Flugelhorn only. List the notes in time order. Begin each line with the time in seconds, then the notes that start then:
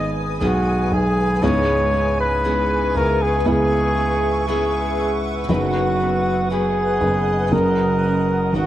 Already playing: D#5
0.42 F#4
0.93 G#4
1.44 C#5
2.20 B4
2.97 A#4
3.22 G#4
3.48 G#4
4.48 G#4
5.50 F#4
6.52 G#4
7.53 A#4
8.56 F#4